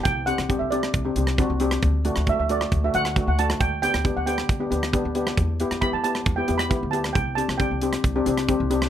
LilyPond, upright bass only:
\new Staff \with { instrumentName = "Upright bass" } { \clef bass \time 4/4 \key c \lydian \tempo 4 = 135 c,8. c,8 c,8. c,8 c,8. c,8. | d,8. d,8 d,8. d,8 d,8. d,8. | d,8. d,8 d,8. d,8 d,8. d,8. | e,8. e,8 e,8. e,8 e,8. d,8. |
c,8. c,8 c,8. c,8 c,8. c,8. | }